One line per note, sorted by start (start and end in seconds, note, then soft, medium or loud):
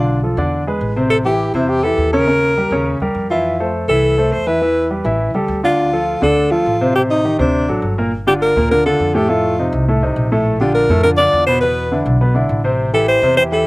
0.00 0.32 B1 medium
0.00 0.18 D3 medium
0.00 0.18 D4 medium
0.00 0.20 F4 medium
0.00 0.18 D5 medium
0.23 0.35 F3 medium
0.23 0.35 F4 medium
0.23 0.35 A4 medium
0.37 0.78 E2 medium
0.37 0.62 D3 medium
0.37 0.62 D4 medium
0.37 0.62 D5 medium
0.67 0.91 G#3 medium
0.67 0.91 G#4 medium
0.67 0.92 B4 medium
0.81 1.49 A1 medium
0.96 1.20 C3 medium
0.96 1.20 C4 medium
0.96 1.21 C5 medium
1.10 1.17 A4 medium
1.25 1.49 E3 medium
1.25 1.50 E4 medium
1.25 1.53 G4 medium
1.25 1.49 G4 medium
1.54 1.95 E2 medium
1.54 1.78 C3 medium
1.54 1.78 C4 medium
1.54 1.71 E4 medium
1.54 1.79 C5 medium
1.69 1.85 G4 medium
1.84 2.08 E3 medium
1.84 2.08 E4 medium
1.84 2.08 G4 medium
1.84 2.12 A4 loud
1.97 2.66 D#2 medium
2.13 2.25 C#3 medium
2.13 2.25 C#4 medium
2.13 2.97 A#4 loud
2.13 2.26 C#5 medium
2.27 2.52 C#3 medium
2.27 2.52 C#4 medium
2.27 2.52 C#5 medium
2.57 2.69 G3 medium
2.57 2.69 G4 medium
2.57 2.69 A#4 medium
2.71 2.98 D#2 medium
2.71 2.96 C#3 medium
2.71 2.96 C#4 medium
2.71 2.96 C#5 medium
3.00 3.14 D#2 medium
3.00 3.25 G3 medium
3.00 3.25 G4 medium
3.00 3.26 A#4 medium
3.15 3.83 F2 medium
3.31 3.55 E3 medium
3.31 3.55 E4 medium
3.31 3.71 F4 medium
3.31 3.55 E5 medium
3.60 3.84 A3 medium
3.60 3.84 A4 medium
3.60 3.84 C5 medium
3.88 4.29 C2 medium
3.88 4.13 E3 medium
3.88 4.13 E4 medium
3.88 4.34 A4 loud
3.88 4.13 E5 medium
4.18 4.42 A3 medium
4.18 4.42 A4 medium
4.18 4.42 C5 medium
4.32 5.00 E2 medium
4.32 4.48 C5 medium
4.47 4.59 E3 medium
4.47 4.59 E4 medium
4.47 4.91 B4 loud
4.47 4.59 E5 medium
4.62 4.86 E3 medium
4.62 4.86 E4 medium
4.62 4.86 E5 medium
4.91 5.03 G3 medium
4.91 5.03 G4 medium
4.91 5.03 B4 medium
5.04 5.32 A1 medium
5.04 5.29 E3 medium
5.04 5.29 E4 medium
5.04 5.30 E5 medium
5.34 5.48 C#2 medium
5.34 5.59 G3 medium
5.34 5.59 G4 medium
5.34 5.59 A4 medium
5.48 6.16 D2 medium
5.63 5.88 D3 medium
5.63 5.88 D4 medium
5.63 6.19 F4 loud
5.63 5.88 D5 medium
5.93 6.17 F3 medium
5.93 6.17 F4 medium
5.93 6.17 A4 medium
6.22 6.63 D2 medium
6.22 6.46 D3 medium
6.22 6.46 D4 medium
6.22 6.53 A4 loud
6.22 6.46 D5 medium
6.51 6.75 F3 medium
6.51 6.95 F4 medium
6.51 6.76 F4 medium
6.51 6.76 A4 medium
6.66 7.34 A1 medium
6.81 6.93 C3 medium
6.81 6.93 C4 medium
6.81 6.93 C5 medium
6.95 7.19 C3 medium
6.95 7.20 C4 medium
6.95 7.02 G4 medium
6.95 7.20 C5 medium
7.11 7.38 D#4 medium
7.25 7.37 D#3 medium
7.25 7.37 D#4 medium
7.25 7.37 G4 medium
7.39 7.66 D2 medium
7.39 7.63 C3 medium
7.39 7.63 C4 medium
7.39 7.94 D4 medium
7.39 7.63 C5 medium
7.68 7.81 A1 medium
7.68 7.92 F#3 medium
7.68 7.93 F#4 medium
7.68 7.93 A4 medium
7.82 8.50 G1 medium
7.98 8.10 A#2 medium
7.98 8.10 A#3 medium
7.98 8.10 A#4 medium
8.27 8.51 D3 medium
8.27 8.51 D4 medium
8.27 8.51 F4 medium
8.27 8.34 G4 medium
8.42 8.69 A#4 loud
8.56 8.97 D2 medium
8.56 8.68 A#2 medium
8.56 8.69 A#3 medium
8.56 8.69 A#4 medium
8.71 8.83 D3 medium
8.71 8.83 D4 medium
8.71 8.83 F4 medium
8.71 8.85 A#4 loud
8.86 9.10 D3 medium
8.86 9.10 D4 medium
8.86 9.10 F4 medium
8.86 9.16 A4 medium
9.00 9.67 F2 medium
9.15 9.27 A2 medium
9.15 9.27 A3 medium
9.15 9.31 G4 medium
9.15 9.27 A4 medium
9.29 9.53 A2 medium
9.29 9.53 A3 medium
9.29 9.73 F4 medium
9.29 9.53 A4 medium
9.59 9.83 C3 medium
9.59 9.83 C4 medium
9.59 9.83 D#4 medium
9.73 10.13 C2 medium
9.88 10.00 A2 medium
9.88 10.00 A3 medium
9.88 10.00 A4 medium
10.02 10.26 C3 medium
10.02 10.27 C4 medium
10.02 10.27 D#4 medium
10.16 10.84 A#1 medium
10.32 10.56 A2 medium
10.32 10.56 A3 medium
10.32 10.56 A4 medium
10.61 10.85 D3 medium
10.61 10.85 D4 medium
10.61 10.85 F4 medium
10.61 10.74 G4 medium
10.75 11.02 A#4 medium
10.89 11.30 F2 loud
10.89 11.02 A2 medium
10.89 11.02 A3 medium
10.89 11.02 A4 medium
11.03 11.16 D3 medium
11.03 11.16 D4 medium
11.03 11.16 F4 medium
11.03 11.10 A#4 loud
11.17 11.43 D3 medium
11.17 11.43 D4 medium
11.17 11.43 F4 medium
11.17 11.45 D5 loud
11.33 12.01 E2 medium
11.47 11.60 B2 medium
11.47 11.60 B3 medium
11.47 11.60 B4 medium
11.47 11.60 C5 medium
11.61 11.87 B2 medium
11.61 11.87 B3 medium
11.61 12.02 B4 medium
11.61 11.87 B4 medium
11.92 12.16 D3 medium
11.92 12.16 D4 medium
11.92 12.16 E4 medium
12.06 12.47 B1 medium
12.21 12.33 B2 medium
12.21 12.33 B3 medium
12.21 12.33 B4 medium
12.35 12.59 D3 medium
12.35 12.59 D4 medium
12.35 12.59 E4 medium
12.49 13.17 A1 medium
12.64 12.88 C3 medium
12.64 12.88 C4 medium
12.64 12.89 C5 medium
12.94 13.17 E3 medium
12.94 13.18 E4 medium
12.94 13.18 G4 medium
12.94 13.07 A4 medium
13.08 13.35 C5 loud
13.22 13.63 E2 medium
13.22 13.35 C3 medium
13.22 13.35 C4 medium
13.22 13.35 C5 medium
13.37 13.49 E3 medium
13.37 13.50 E4 medium
13.37 13.50 G4 medium
13.37 13.44 C5 loud
13.52 13.67 E3 medium
13.52 13.67 E4 medium
13.52 13.67 G4 medium
13.52 13.67 A4 medium